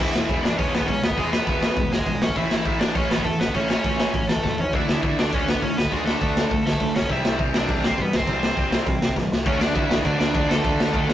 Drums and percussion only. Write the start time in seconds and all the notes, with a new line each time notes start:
0.16 snare
0.29 kick, open hi-hat
0.45 snare
0.59 kick, open hi-hat
0.75 snare
0.81 kick
0.88 kick, open hi-hat
1.04 snare
1.10 kick
1.18 kick, open hi-hat
1.33 snare
1.47 kick, open hi-hat
1.63 snare
1.76 kick, open hi-hat
1.93 snare
1.99 kick
2.06 kick, open hi-hat
2.22 snare
2.29 kick
2.36 kick, open hi-hat
2.51 snare
2.65 kick, open hi-hat
2.81 snare
2.95 kick, open hi-hat
3.11 snare
3.18 kick
3.25 kick, open hi-hat
3.41 snare
3.47 kick
3.55 kick, open hi-hat
3.70 snare
3.84 kick, open hi-hat
4.00 snare
4.14 kick, open hi-hat
4.29 snare
4.36 kick
4.44 kick, snare
4.58 floor tom
4.73 kick, open hi-hat
4.89 snare
5.03 kick, open hi-hat
5.19 snare
5.33 kick, open hi-hat
5.48 snare
5.55 kick
5.62 kick, open hi-hat
5.78 snare
5.85 kick
5.92 kick, open hi-hat
6.08 snare
6.22 kick, open hi-hat
6.37 snare
6.51 kick, open hi-hat
6.67 snare
6.73 kick
6.80 kick, open hi-hat
6.96 snare
7.02 kick
7.09 kick, open hi-hat
7.25 snare
7.39 kick, open hi-hat
7.54 snare
7.69 kick, open hi-hat
7.84 snare
7.91 kick
7.98 kick, open hi-hat
8.13 snare
8.20 kick
8.27 kick, open hi-hat
8.43 snare
8.57 kick, open hi-hat
8.72 snare
8.86 kick, open hi-hat
9.02 snare
9.09 kick
9.16 kick, snare
9.32 snare
9.46 kick, crash
9.61 snare
9.75 kick, crash
9.91 snare
9.98 kick
10.05 kick, crash
10.21 snare
10.35 kick, crash
10.51 snare
10.64 kick, crash
10.80 snare
10.94 kick, crash
11.10 snare